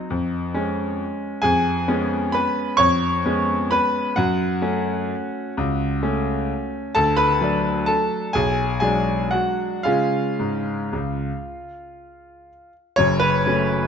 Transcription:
Already playing: D#5
0.10 F2
0.54 G#3 C#4
1.42 F2 G#4 G#5
1.88 G#3 B3 C#4
2.32 B4 B5
2.77 F2 C#5 C#6
3.25 G#3 B3 C#4
3.71 B4 B5
4.16 F#2 F#4 F#5
4.62 A3 C#4
5.57 C#2
6.03 A3 C#4
6.95 D2 A4 A5
7.17 B4 B5
7.41 F#3 A3 D4
7.86 A4 A5
8.33 B1 G#4 G#5
8.80 F#3 G#3 D4 G#4 G#5
9.31 F#4 F#5
9.83 C#3 G#3 C#4 F4 F5
10.39 G#2
10.93 C#2
12.96 F#1 F#2 C#5
13.20 B4
13.46 F#3 A3 C#4

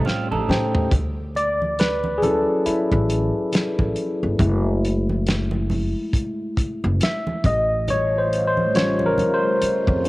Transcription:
Already playing: A2 C#3 G3 A3 C#4 G4 C5 F5
0.05 C4 F4, snare, muted conga
0.31 A1 D#4 A4, high conga
0.48 A2 A3 C#4 G4 C5 G5, snare
0.75 floor tom
0.91 D2, kick, closed hi-hat, low conga
1.35 D5, closed hi-hat, muted conga
1.62 high conga
1.79 B4, snare, closed hi-hat
2.04 high conga
2.18 G#4
2.22 F#3 C#4 E4 A4, closed hi-hat, muted conga, high conga, low conga
2.66 E4, muted upright bass stroke, closed hi-hat
2.92 A1, kick
3.09 closed hi-hat, muted conga
3.52 muted upright bass stroke, snare, closed hi-hat, muted conga
3.79 A1, kick, high conga
3.96 closed hi-hat
4.23 G1
4.39 F#1 G#3 A3 E4, kick, closed hi-hat, muted conga, low conga
4.85 closed hi-hat
5.10 high conga
5.27 snare, closed hi-hat, muted conga
5.51 high conga
5.70 open hi-hat, high conga, low conga
6.13 kick, closed hi-hat, muted conga
6.57 muted upright bass stroke, kick, closed hi-hat
6.84 F#1
7.00 E5, snare, closed hi-hat, muted conga
7.27 high conga
7.44 A1 D#5, kick, closed hi-hat
7.87 C#3 G3 A3 F4 C#5, closed hi-hat, muted conga, low conga
8.18 C5
8.33 closed hi-hat
8.47 C5
8.57 high conga
8.74 G3 C#4 F4 C#5, snare, closed hi-hat
8.99 high conga
9.06 A#4
9.18 closed hi-hat, muted conga, high conga, low conga
9.34 C5
9.61 muted upright bass stroke, closed hi-hat, muted conga
9.87 F2, kick
10.04 G3, closed hi-hat, muted conga

